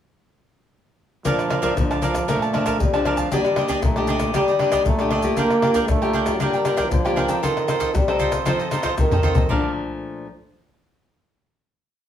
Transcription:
1.25 A#2 F3 A3 D4 A#4 D5 F5 A5, pandeiro, shaker, surdo
1.39 pandeiro, tamborim, shaker
1.50 A#4 D5 F5 A5, pandeiro, tamborim
1.62 F3 A3 D4 A#4 D5 F5 A5, pandeiro, shaker, surdo
1.77 F2 D3, pandeiro, tamborim, shaker, surdo
1.91 D5 F5 A5, pandeiro, tamborim, shaker
2.02 F3 A3 D4 A#4 D5 F5 A5, pandeiro, shaker
2.15 pandeiro, tamborim, shaker, surdo
2.28 A#2 F3 A3 D4 A#4 D5 F5 A5, pandeiro, tamborim, shaker, surdo
2.42 D5 F5 A5, pandeiro, shaker
2.53 F3 A3 D4 A#4 D5 F5 A5, pandeiro, tamborim
2.66 A#4 D5 F5 A5, pandeiro, tamborim, shaker, surdo
2.80 F2 G3, pandeiro, shaker, surdo
2.93 F3 A3 D4 D5 F5 A5, pandeiro, tamborim, shaker
3.05 F3 A#4 D5 F5 A5, pandeiro, tamborim
3.17 D5 F5 A5, pandeiro, shaker, surdo
3.31 D#3 G3 A#3 D4 G4 D5 D#5, pandeiro, shaker, surdo
3.45 pandeiro, tamborim, shaker
3.56 A#3 D4 G4 D5 D#5, pandeiro, tamborim
3.68 D4 G4 D5 D#5, pandeiro, shaker, surdo
3.83 A#2 A3, pandeiro, tamborim, shaker, surdo
3.96 D4 G4 D5 D#5, pandeiro, tamborim, shaker
4.07 D4 G4 D5 D#5, pandeiro, shaker
4.19 pandeiro, tamborim, shaker, surdo
4.34 D#3 G3 A#3 D4 G4 D5 D#5, pandeiro, tamborim, shaker, surdo
4.48 G4 D5 D#5, pandeiro, shaker
4.59 G3 A#3 D4 G4 D5 D#5, pandeiro, tamborim
4.72 D4 G4 D5 D#5, pandeiro, tamborim, shaker, surdo
4.85 A#2 A3, pandeiro, shaker, surdo
4.99 A#3 D4 G4 D5 D#5, pandeiro, tamborim, shaker
5.11 D4 G4 D5 D#5, pandeiro, tamborim
5.22 A#3 F4 G4 D5 D#5, pandeiro, shaker, surdo
5.37 D3 A#3 D4 A#4 D5 G5, pandeiro, shaker, surdo
5.50 pandeiro, tamborim, shaker
5.62 A#3 D4 F4 G4 A#4 D5 G5, pandeiro, tamborim
5.74 D4 A#4 D5 G5, pandeiro, shaker, surdo
5.82 G#3
5.87 D3 A3, pandeiro, tamborim, shaker, surdo
6.02 A#3 F4 G4 A#4 D5 G5, pandeiro, tamborim, shaker
6.13 D4 A#4 D5 G5, pandeiro
6.25 A#3 F4 G4, pandeiro, tamborim, shaker, surdo
6.34 F#3
6.40 D3 G3 A#3 D4 F4 G4 A#4 D5 G5, pandeiro, tamborim, shaker, surdo
6.53 A#4 D5 G5, pandeiro, shaker
6.65 A#3 D4 F4 G4 A#4 D5 G5, pandeiro, tamborim, shaker
6.77 D4 A#4 D5 G5, pandeiro, tamborim, shaker, surdo
6.84 E3
6.91 D3 F3, pandeiro, shaker, surdo
7.05 A#3 F4 G4 A#4 D5 G5, pandeiro, tamborim, shaker
7.16 D4 A#4 D5 G5, pandeiro, tamborim
7.28 C4 D#4 A4 A#4 D5 G5, pandeiro, shaker, surdo
7.42 D#3 F3 F4 A4 C5 D#5, pandeiro, shaker, surdo
7.57 pandeiro, tamborim, shaker
7.67 C4 D#4 F4 A4 C5 D#5, pandeiro, tamborim, shaker
7.80 F4 A4 C5 D#5, pandeiro, shaker, surdo
7.94 C3 G3, pandeiro, tamborim, shaker, surdo
8.08 C4 D#4 A4 C5 D#5, pandeiro, tamborim, shaker
8.19 F4 A4 C5 D#5, pandeiro, shaker, surdo
8.32 pandeiro, tamborim, shaker, surdo
8.45 F3 C4 D#4 F4 A4 C5 D#5, pandeiro, tamborim, shaker, surdo
8.59 A4 C5 D#5, pandeiro, shaker
8.71 C4 D#4 F4 A4 C5 D#5, pandeiro, tamborim, shaker
8.83 F4 A4 C5 D#5, pandeiro, tamborim, shaker, surdo
8.98 C3 D#3, pandeiro, tamborim, shaker, surdo
9.11 C4 D#4 A4 C5 D#5, surdo, pandeiro, shaker
9.23 F4 A4 C5 D#5, surdo, pandeiro
9.35 A4 C5 D#5, pandeiro, shaker, surdo
9.49 A#2 D3 F3 A3 D4 A#4 D5 F5 A5, surdo

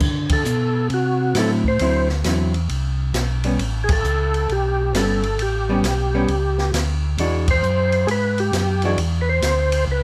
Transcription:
0.00 D3, kick, crash
0.29 A4, kick, ride
0.45 B2, hi-hat pedal
0.90 C3 F#4, ride
1.35 A2 D3 F#3 C4 E4, snare, hi-hat pedal, ride
1.39 A4
1.64 C5, kick
1.79 D2 D3 F#3 C4 E4, ride
2.09 snare
2.24 E2 D3 F#3 C4 E4, snare, hi-hat pedal, ride
2.54 ride
2.69 C2, ride
3.14 B1, snare, hi-hat pedal, ride
3.44 G3 B3 C#4, ride
3.59 A1, ride
3.84 G#4
3.89 A4, kick, ride
4.04 C#2, hi-hat pedal
4.34 ride
4.49 B1 G4, ride
4.93 G1 G3 B3 C#4 A4, snare, hi-hat pedal, ride
5.23 ride
5.38 A1 G4, ride
5.69 G3 B3 C#4
5.83 B1, snare, hi-hat pedal, ride
6.14 G3 B3 C#4
6.28 C#2, ride
6.58 snare
6.73 D2, snare, hi-hat pedal, ride
7.18 E2 E3 G#3 D4 F#4, ride
7.48 C5, kick, ride
7.63 F#2, hi-hat pedal
7.92 ride
8.07 G#2 G#4, ride
8.11 B4
8.38 G4, ride
8.52 F#2, snare, hi-hat pedal, ride
8.82 E3 G#3 D4 F#4 G#4, ride
8.97 E2, ride
9.21 B4
9.29 C5
9.42 D2, snare, hi-hat pedal, ride
9.72 ride
9.87 C#2 B4

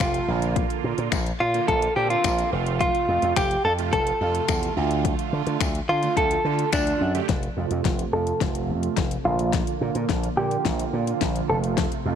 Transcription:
Already playing: C3 A3 F4
0.00 F1, finger snap, kick, closed hi-hat, tambourine
0.14 closed hi-hat
0.28 A#1 D3 A#3 F4
0.42 closed hi-hat
0.56 kick, closed hi-hat
0.70 closed hi-hat
0.84 A#2
0.98 A#2, closed hi-hat
1.12 A#1, finger snap, kick, closed hi-hat, tambourine
1.26 closed hi-hat
1.40 A#2 F4
1.54 D3 A#3 F4, closed hi-hat
1.68 A#1 A4, kick, closed hi-hat
1.82 closed hi-hat
1.96 A#2 D3 A#3 C4 G4
2.10 F4, closed hi-hat
2.24 A#1, finger snap, kick, closed hi-hat, tambourine
2.39 closed hi-hat
2.52 F1 C3 A3 F4
2.66 closed hi-hat
2.81 F4, kick, closed hi-hat
2.95 closed hi-hat
3.09 F2
3.22 F2, closed hi-hat
3.36 F1 G4, finger snap, kick, closed hi-hat, tambourine
3.51 closed hi-hat
3.65 F2 A4
3.78 C3 A3 F4, closed hi-hat
3.93 F1 A4, kick, closed hi-hat
4.07 closed hi-hat
4.20 F2 C3 A3 F4
4.35 closed hi-hat
4.48 E2, finger snap, kick, closed hi-hat, tambourine
4.63 closed hi-hat
4.77 D2 D3 A3 F4
4.91 closed hi-hat
5.05 kick, closed hi-hat
5.19 closed hi-hat
5.33 D3
5.47 D3, closed hi-hat
5.61 D2, finger snap, kick, closed hi-hat, tambourine
5.75 closed hi-hat
5.89 D3 F4
6.03 D3 A3 F4, closed hi-hat
6.17 D2 A4, kick, closed hi-hat
6.31 closed hi-hat
6.45 D3 A3 F4
6.59 closed hi-hat
6.72 D2 D4, finger snap, kick, closed hi-hat, tambourine
6.87 closed hi-hat
7.01 F#2
7.14 D3 A3 G4, closed hi-hat
7.29 F1 C3 F3 A3, kick, snare, closed hi-hat
7.43 closed hi-hat
7.57 F2 C3 A3 F4
7.71 F2, closed hi-hat
7.85 F1, kick, snare, closed hi-hat
7.99 closed hi-hat
8.13 F2 C3 A3 F4 A4
8.27 closed hi-hat
8.41 F1, kick, snare, closed hi-hat
8.55 closed hi-hat
8.69 F2
8.83 closed hi-hat
8.97 F1, kick, snare, closed hi-hat
9.11 closed hi-hat
9.25 A#1 D3 A#3 F4
9.39 closed hi-hat
9.53 kick, snare, closed hi-hat
9.67 closed hi-hat
9.81 A#2 D3 A#3 F4
9.95 A#2, closed hi-hat
10.09 A#1, kick, snare, closed hi-hat
10.23 closed hi-hat
10.37 A#2 D3 A#3 F4 G4
10.51 closed hi-hat
10.65 A#1 D3 A#3 F4, kick, snare, closed hi-hat
10.79 closed hi-hat
10.93 A#2 D3 A#3 F4
11.07 D3 A#3 F4, closed hi-hat
11.21 A#1, kick, snare, closed hi-hat
11.36 closed hi-hat
11.49 F1 C3 A3 F4 A4
11.64 closed hi-hat
11.78 kick, snare, closed hi-hat
11.92 closed hi-hat
12.05 F2 C3 A3 F4

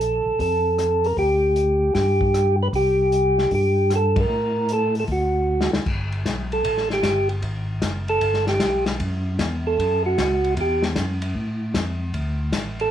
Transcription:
Already playing: A#1 A4
0.01 closed hi-hat
0.25 A#1
0.39 F2 A4, kick, open hi-hat
0.78 cross-stick, closed hi-hat
1.04 A#4, open hi-hat
1.17 D2 G4, kick, open hi-hat
1.56 closed hi-hat
1.95 G2 G4, kick, snare, open hi-hat
2.21 kick
2.34 cross-stick, closed hi-hat
2.63 B4
2.73 C2 G4, kick, open hi-hat
3.12 closed hi-hat
3.38 snare
3.51 G2 G4, kick, open hi-hat
3.90 cross-stick, closed hi-hat
3.95 A4
4.16 A#4, kick, ride
4.29 A2
4.69 closed hi-hat
4.73 A4
4.95 open hi-hat
5.00 A4
5.08 D2, kick, open hi-hat
5.12 F#4
5.61 snare
5.73 D2, snare
5.86 G1, kick, crash
6.12 ride
6.25 B1, kick, snare, hi-hat pedal, ride
6.52 A4, ride
6.64 A1, kick, ride
6.77 snare
6.90 G4, snare
7.03 G1, kick, snare, hi-hat pedal, ride
7.29 ride
7.42 G#1, kick, ride
7.82 F#1, kick, snare, hi-hat pedal, ride
8.08 A4, ride
8.21 G1, kick, ride
8.34 snare
8.47 G4, snare, ride
8.60 B1, kick, snare, hi-hat pedal, ride
8.86 snare, ride
9.00 F#2, kick, ride
9.39 E2, kick, snare, hi-hat pedal, ride
9.67 A4
9.78 F#2, kick, ride
10.06 F#4
10.18 C#2, kick, snare, hi-hat pedal, ride
10.44 ride
10.57 E2, kick, ride
10.61 G4
10.82 snare
10.96 F#2, kick, snare, hi-hat pedal, ride
11.22 ride
11.35 A2, kick
11.74 F2, kick, snare, hi-hat pedal, ride
12.13 D2, kick, ride
12.52 A1, kick, snare, hi-hat pedal, ride
12.80 A4, ride

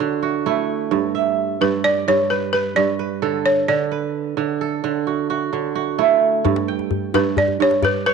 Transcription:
Already playing: F#4 A4
0.00 D3
0.22 F#4
0.46 A3 E4
0.91 G2
1.15 E5
1.61 G2 B4
1.84 D5
2.08 G2 C#5
2.30 B4
2.53 B4
2.76 G2 D5
2.99 B4
3.22 D3 A4
3.46 C#5
3.68 D3 D5
3.92 B4
4.37 D3
4.61 A4
4.84 D3
5.07 F#4
5.30 F#4
5.53 D3
5.75 F#4
5.99 A3 E4
6.45 G2, djembe tone, djembe bass
6.56 djembe slap
6.68 G5
6.79 djembe tone
6.91 djembe bass
7.14 G2 B4, djembe slap, djembe tone
7.37 D5, djembe bass
7.48 djembe tone
7.60 G2 C#5
7.71 djembe slap
7.82 B4 D5, djembe tone, djembe bass
8.06 B4 C#5

